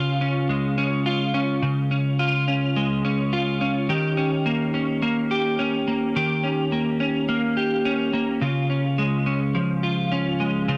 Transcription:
Already playing: C#3 C#4 F4
0.21 C#4
0.49 G#3
0.78 C#4
1.06 F4
1.34 C#4
1.62 C#3
1.91 C#4
2.19 F4
2.48 C#4
2.76 G#3
3.05 C#4
3.33 F4
3.61 C#4
3.89 D#3 G4
4.17 C#4
4.46 A#3
4.74 C#4
5.02 A#3
5.31 G4
5.59 C#4
5.88 A#3
6.16 D#3 G4
6.44 C#4
6.72 A#3
7.00 C#4
7.29 A#3
7.57 G4
7.85 C#4
8.13 A#3
8.41 C#3 F4
8.70 C#4
8.98 G#3
9.26 C#4
9.55 F3
9.83 F4
10.12 C#4
10.40 G#3
10.68 C#3 F4

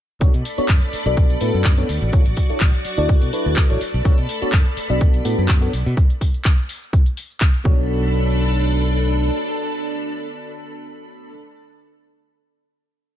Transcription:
0.20 B1 B3 D4 F#4 A4 C#5 D5 B5, kick, closed hi-hat, cabasa
0.34 B2, closed hi-hat
0.45 open hi-hat, cabasa
0.58 B3 D4 F#4 A4 C#5, muted fingered electric bass stroke, closed hi-hat, cabasa
0.69 F#2, kick, clap, closed hi-hat, cabasa
0.82 closed hi-hat
0.93 muted fingered electric bass stroke, open hi-hat, cabasa
1.06 B1 B3 D4 F#4 A4 D5, cabasa
1.17 kick, closed hi-hat, cabasa
1.30 closed hi-hat, cabasa
1.41 A2 B3 D4 F#4 A4 B4, open hi-hat, cabasa
1.54 F#2, cabasa
1.64 kick, clap, closed hi-hat, cabasa
1.77 B3 D4 F#4 A4 C#5, closed hi-hat, cabasa
1.89 D2 F#4 D5 C#6, open hi-hat, cabasa
2.02 A1, cabasa
2.12 D2 D4 E4 F#4 A4 C#5, kick, closed hi-hat, cabasa
2.26 A1, closed hi-hat
2.37 kick, open hi-hat, cabasa
2.49 D4 E4 F#4 A4 C#5, muted fingered electric bass stroke, closed hi-hat, cabasa
2.60 A1, kick, clap, closed hi-hat, cabasa
2.74 closed hi-hat
2.85 muted fingered electric bass stroke, open hi-hat, cabasa
2.97 D2 D4 E4 F#4 A4 D5, cabasa
3.09 kick, closed hi-hat, cabasa
3.22 B2, closed hi-hat, cabasa
3.33 D4 E4 F#4 A4 B4, open hi-hat, cabasa
3.46 D2, cabasa
3.56 kick, clap, closed hi-hat, cabasa
3.69 A1 D4 E4 F#4 A4 C#5, closed hi-hat, cabasa
3.81 A4 B5, open hi-hat, cabasa
3.94 B1, cabasa
4.04 B1 B3 D4 F#4 A4 C#5, kick, closed hi-hat, cabasa
4.18 B2, closed hi-hat
4.29 open hi-hat, cabasa
4.42 B3 D4 F#4 A4 C#5, muted fingered electric bass stroke, closed hi-hat, cabasa
4.52 F#2, kick, clap, closed hi-hat, cabasa
4.66 closed hi-hat
4.77 muted fingered electric bass stroke, open hi-hat, cabasa
4.89 B1 B3 D4 F#4 A4 D5, cabasa
5.01 kick, closed hi-hat, cabasa
5.14 closed hi-hat, cabasa
5.25 A2 B3 D4 F#4 A4 B4, open hi-hat, cabasa
5.38 F#2, cabasa
5.49 kick, clap, closed hi-hat, cabasa
5.61 B3 D4 F#4 A4 C#5, closed hi-hat, cabasa
5.73 B1, open hi-hat, cabasa
5.86 B2, cabasa
5.97 kick, closed hi-hat, cabasa
6.10 closed hi-hat
6.21 kick, open hi-hat, cabasa
6.34 closed hi-hat, cabasa
6.45 kick, clap, closed hi-hat, cabasa
6.58 closed hi-hat
6.69 open hi-hat, cabasa
6.82 cabasa
6.93 kick, closed hi-hat, cabasa
7.06 closed hi-hat, cabasa
7.17 open hi-hat, cabasa
7.30 cabasa
7.41 kick, clap, closed hi-hat, cabasa
7.54 closed hi-hat, cabasa
7.64 B1 B3 D4 F#4 A4 C#5 B5, kick

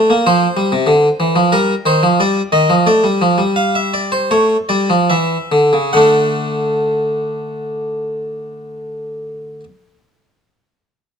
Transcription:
Already playing: A3 D5
0.10 A#3
0.27 F3 C5
0.57 G3
0.72 C3
0.87 D3
1.20 E3
1.36 F3
1.52 G3 A#4
1.86 D#3 C5
2.03 F3
2.20 G3 D5
2.52 D#3 D#5
2.70 F3
2.86 A3 D5
3.04 G3
3.22 F3
3.38 G3
3.56 F5
3.75 E5
3.94 D5
4.12 C5
4.31 A3 C#5
4.69 G3 D5
4.90 F3
5.10 E3 E5
5.52 D3
5.73 C#3
5.93 D3 A3 D4 F#5

